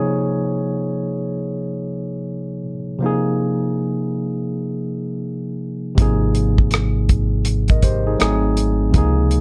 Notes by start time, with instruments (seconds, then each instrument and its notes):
Already playing: tine electric piano C3 F3 A#3 D#4 G#4 C#5
2.99 tine electric piano C3 F3 A#3
3.04 tine electric piano D#4 G#4
5.95 fingered electric bass G#1, tine electric piano C3 F3 A#3, kick, closed hi-hat
6.00 tine electric piano D#4 G#4
6.35 closed hi-hat
6.58 kick
6.71 cross-stick, closed hi-hat
7.09 kick, closed hi-hat
7.45 closed hi-hat
7.68 tine electric piano A#4 D#5, kick, closed hi-hat
7.82 tine electric piano G4 C5, kick, closed hi-hat
8.07 tine electric piano D#4 G#4
8.18 fingered electric bass G#1, tine electric piano F#3 A3 C4 D#4 G#4, cross-stick, closed hi-hat
8.57 closed hi-hat
8.91 fingered electric bass C#2, tine electric piano C3 F3 A#3, kick, closed hi-hat
8.96 tine electric piano D#4 G#4
9.31 closed hi-hat